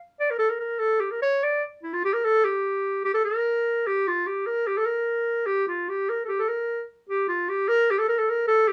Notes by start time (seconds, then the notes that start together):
0.20 D5
0.30 A#4
0.39 A4
0.50 A#4
0.60 A#4
0.79 A4
1.00 G4
1.11 A#4
1.22 C#5
1.44 D5
1.83 E4
1.93 F4
2.04 G4
2.14 A#4
2.25 A4
2.44 G4
3.04 G4
3.14 A4
3.25 A#4
3.87 G4
4.07 F4
4.27 G4
4.46 A#4
4.67 G4
4.77 A4
4.85 A#4
5.46 G4
5.68 F4
5.89 G4
6.09 A#4
6.25 G4 A4
6.39 A4
6.48 A#4
7.09 G4
7.28 F4
7.49 G4
7.68 A#4
7.91 G4
7.98 A4
8.08 A#4
8.19 A4
8.30 A#4
8.48 A4
8.68 G4